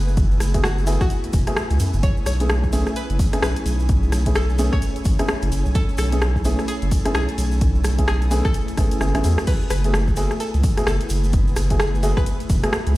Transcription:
Already playing: sub bass F#1, analog synth pad A3 B3 E4 G#4, ambient pad A3 E4 B4 G#5
0.08 shaker
0.17 kick, closed hi-hat, shaker
0.31 shaker
0.40 sub bass F#1, cross-stick, open hi-hat, shaker
0.54 grand piano A3 B3 E4 F#4 G#4, kick, closed hi-hat, shaker
0.64 synth pluck F#4, cross-stick, shaker
0.78 shaker
0.87 grand piano A3 B3 E4 F#4 G#4, open hi-hat, shaker
1.01 synth pluck F#4, kick, cross-stick, shaker
1.10 closed hi-hat, shaker
1.24 closed hi-hat, shaker
1.33 sub bass E1, kick, open hi-hat, shaker
1.47 grand piano A3 B3 E4 F#4 G#4, cross-stick, closed hi-hat, shaker
1.57 cross-stick, shaker
1.70 sub bass C#2, closed hi-hat, shaker
1.80 sub bass F#2, open hi-hat, shaker
1.93 sub bass F#1, shaker
2.03 analog synth pad A3 C#4 G#4, synth pluck C#5, kick, closed hi-hat, shaker
2.10 ambient pad C#5
2.17 shaker
2.26 sub bass B1, synth pluck C#5, cross-stick, open hi-hat, shaker
2.40 grand piano A3 B3 C#4 E4 G#4, closed hi-hat, shaker
2.49 cross-stick, shaker
2.63 kick, shaker
2.73 grand piano A3 B3 C#4 E4 G#4, open hi-hat, shaker
2.86 cross-stick, shaker
2.96 synth pluck B4, closed hi-hat, shaker
3.10 sub bass F#1, closed hi-hat, shaker
3.19 kick, open hi-hat, shaker
3.33 grand piano A3 B3 C#4 E4 G#4, cross-stick, closed hi-hat, shaker
3.42 sub bass B1, synth pluck B4, cross-stick, shaker
3.56 closed hi-hat, shaker
3.66 sub bass B1, open hi-hat, shaker
3.80 shaker
3.89 kick, closed hi-hat, shaker
4.03 shaker
4.12 sub bass B1, cross-stick, open hi-hat, shaker
4.26 grand piano A3 B3 C#4 E4 G#4, kick, closed hi-hat, shaker
4.35 synth pluck A4, cross-stick, shaker
4.49 shaker
4.58 grand piano A3 B3 C#4 E4 G#4, open hi-hat, shaker
4.73 synth pluck C#5, kick, cross-stick, shaker
4.82 closed hi-hat, shaker
4.96 closed hi-hat, shaker
5.05 sub bass A1, kick, open hi-hat, shaker
5.19 grand piano A3 B3 C#4 E4 G#4, cross-stick, closed hi-hat, shaker
5.28 cross-stick, shaker
5.42 sub bass F#1, closed hi-hat, shaker
5.52 sub bass F#1, open hi-hat, shaker
5.66 sub bass B1, shaker
5.75 synth pluck A4, analog synth pad A4, kick, closed hi-hat, shaker
5.89 shaker
5.97 sub bass B1, synth pluck A4, cross-stick, open hi-hat, shaker
6.12 grand piano A3 B3 C#4 E4 G#4, closed hi-hat, shaker
6.21 cross-stick, shaker
6.36 kick, shaker
6.45 grand piano A3 B3 C#4 E4 G#4, open hi-hat, shaker
6.59 cross-stick, shaker
6.68 synth pluck G#4, closed hi-hat, shaker
6.82 sub bass F#1, closed hi-hat, shaker
6.91 kick, open hi-hat, shaker
7.05 grand piano A3 B3 C#4 E4 G#4, cross-stick, closed hi-hat, shaker
7.15 sub bass B1, synth pluck G#4, cross-stick, shaker
7.29 closed hi-hat, shaker
7.38 sub bass B1, open hi-hat, shaker
7.52 shaker
7.61 kick, closed hi-hat, shaker
7.75 shaker
7.84 sub bass B1, cross-stick, open hi-hat, shaker
7.99 grand piano A3 B3 C#4 E4 G#4, kick, closed hi-hat, shaker
8.07 synth pluck G#4, cross-stick, shaker
8.22 closed hi-hat, shaker
8.31 grand piano A3 B3 C#4 E4 G#4, open hi-hat, shaker
8.45 synth pluck A4, kick, cross-stick, shaker
8.54 closed hi-hat, shaker
8.68 closed hi-hat, shaker
8.77 sub bass A1, grand piano A3 B3 C#4 E4 G#4, kick, cross-stick, open hi-hat, shaker
8.91 closed hi-hat, shaker
9.01 sub bass F#1, grand piano A3 B3 C#4 E4 G#4, cross-stick, shaker
9.15 sub bass A1, grand piano A3 B3 C#4 E4 G#4, cross-stick, closed hi-hat, shaker
9.24 sub bass E2, grand piano A3 B3 E4 F#4 G#4, open hi-hat, shaker
9.38 cross-stick, shaker
9.47 analog synth pad B3 E4 G#4, synth pluck B4, kick, closed hi-hat, crash, shaker
9.62 shaker
9.70 sub bass F#1, synth pluck B4, cross-stick, open hi-hat, shaker
9.84 grand piano A3 B3 E4 F#4 G#4, closed hi-hat, shaker
9.93 ambient pad B4, cross-stick, shaker
10.08 kick, shaker
10.16 grand piano A3 B3 E4 F#4 G#4, open hi-hat, shaker
10.31 cross-stick, shaker
10.40 synth pluck A4, closed hi-hat, shaker
10.54 sub bass C#2, closed hi-hat, shaker
10.63 kick, open hi-hat, shaker
10.77 grand piano A3 B3 E4 F#4 G#4, cross-stick, closed hi-hat, shaker
10.87 sub bass F#1, synth pluck A4, cross-stick, shaker
11.01 closed hi-hat, shaker
11.09 sub bass F#1, open hi-hat, shaker
11.24 shaker
11.33 kick, closed hi-hat, shaker
11.47 shaker
11.56 sub bass F#1, cross-stick, open hi-hat, shaker
11.70 grand piano A3 B3 E4 F#4 G#4, kick, closed hi-hat, shaker
11.80 synth pluck G#4, cross-stick, shaker
11.95 shaker
12.03 grand piano A3 B3 E4 F#4 G#4, open hi-hat, shaker
12.17 synth pluck B4, kick, cross-stick, shaker
12.26 closed hi-hat, shaker
12.40 closed hi-hat, shaker
12.50 sub bass E1, kick, open hi-hat, shaker
12.63 grand piano A3 B3 E4 F#4 G#4, cross-stick, closed hi-hat, shaker
12.73 cross-stick, shaker
12.86 sub bass C#2, closed hi-hat, shaker

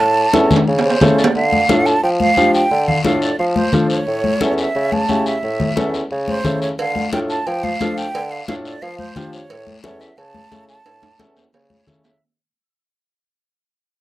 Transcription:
Already playing: flute A5
0.00 bassoon A2, high conga, high timbale, long guiro
0.33 bassoon E2, upright piano C#4 E4 A4, high conga, high timbale, short guiro
0.51 high conga, low conga, short guiro
0.56 high timbale
0.68 bassoon C#3, high conga, long guiro
0.79 low timbale
0.84 flute C5
0.90 low timbale
1.01 bassoon C#3, upright piano C#4 E4 A4, high conga, low conga, low timbale, short guiro
1.18 flute D5, short guiro
1.24 low timbale
1.35 bassoon D3, flute F5, high conga, long guiro
1.52 high conga
1.69 bassoon A2, upright piano D4 F4 A4, high conga, short guiro
1.86 flute A5, short guiro
2.03 bassoon F3, flute G5, high conga, long guiro
2.20 flute F5, high conga
2.37 bassoon F3, upright piano D4 F4 G4, high conga, short guiro
2.54 flute G5, short guiro
2.71 bassoon D3, high conga, long guiro
2.88 flute F5, low conga
3.05 bassoon A2, upright piano D4 F4 A4, flute F5, high conga, short guiro
3.22 flute D5, short guiro
3.39 bassoon F3, flute F5, high conga, long guiro
3.55 flute C5, high conga
3.73 bassoon F3, upright piano D4 F4 A4, high conga, low conga, short guiro
3.90 flute C#5, short guiro
4.07 bassoon A2, high conga, long guiro
4.24 high conga
4.41 bassoon E2, upright piano C#4 E4 A4, high conga, short guiro
4.58 flute E5, short guiro
4.75 bassoon C#3, high conga, long guiro
4.92 flute A5, high conga
5.09 bassoon C#3, upright piano C#4 E4 G4, high conga, short guiro
5.26 flute E5, short guiro
5.43 bassoon A2, high conga, long guiro
5.60 high conga, low conga
5.76 bassoon E2, upright piano C#4 E4 A4, high conga, short guiro
5.94 short guiro
6.11 bassoon C#3, high conga, long guiro
6.28 flute C5, high conga
6.44 bassoon C#3, upright piano C#4 E4 A4, high conga, low conga, short guiro
6.62 flute C#5, short guiro
6.79 bassoon D3, flute F5, cowbell, high conga, long guiro
6.96 high conga
7.12 bassoon A2, upright piano D4 F4 A4, flute G5, cowbell, high conga, short guiro
7.30 flute A5, short guiro
7.47 bassoon F3, flute G5, cowbell, high conga, long guiro
7.64 flute F5, high conga
7.81 bassoon F3, upright piano D4 F4 A4, cowbell, high conga, short guiro
7.97 flute G5, short guiro
8.15 bassoon D3, cowbell, high conga, long guiro
8.31 flute F5
8.48 bassoon A2, upright piano D4 F4 A4, flute F5, cowbell, high conga, short guiro
8.65 flute D5, short guiro
8.82 bassoon F3, flute F5, cowbell, high conga, long guiro
8.98 flute C5, high conga
9.16 bassoon F3, upright piano D4 F4 G4, cowbell, high conga, low conga, short guiro
9.33 flute C#5, short guiro
9.50 bassoon A2, cowbell, high conga, long guiro
9.67 high conga
9.83 bassoon E2, upright piano C#4 E4 A4, flute C#5, cowbell, high conga, short guiro
10.00 flute E5, short guiro
10.18 bassoon C#3, flute A5, cowbell, high conga, long guiro
10.34 high conga
10.51 bassoon C#3, upright piano C#4 E4 A4, cowbell, high conga, short guiro
10.68 flute A5, short guiro
10.86 bassoon A2, cowbell, high conga, high timbale, long guiro
11.03 high conga, high timbale
11.19 bassoon E2, upright piano C#4 E4 A4, cowbell, high conga, high timbale, short guiro
11.37 low timbale, short guiro
11.53 bassoon C#3, cowbell, high conga, low timbale, long guiro
11.70 flute C#5, high conga
11.87 bassoon C#3, upright piano C#4 E4 A4, cowbell, high conga, low conga, short guiro
12.04 flute E5, low timbale, short guiro

